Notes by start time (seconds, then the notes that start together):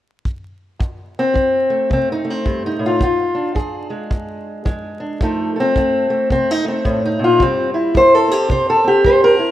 0.25 kick
0.80 F2, kick
1.19 C4
1.34 F3, kick
1.70 A3
1.90 C3 C4, kick
2.12 D#4
2.25 A3
2.30 C4
2.45 G2, kick
2.66 D#4
2.79 A2
2.86 F4
2.99 A#2, kick
3.03 F4
3.35 D4
3.55 F3 G#4, kick
3.90 G#3
4.10 F2, kick
4.65 F3 G#3, kick
5.00 D4
5.21 F2 F3 A3 D#4 A4, kick
5.56 A4
5.60 C4
5.76 F3 A3, kick
6.10 A3
6.30 C3 C4, kick
6.51 D#4
6.65 A3 C4
6.85 A2, kick
7.05 D#4
7.19 A#2
7.24 F4
7.39 C3 G3 C4, kick
7.74 E4
7.94 G3 C5, kick
8.15 A4
8.28 C4 G4
8.48 C3 C5, kick
8.70 A4
8.84 C4 G4
9.04 G3 C5, kick
9.24 A#4
9.39 E4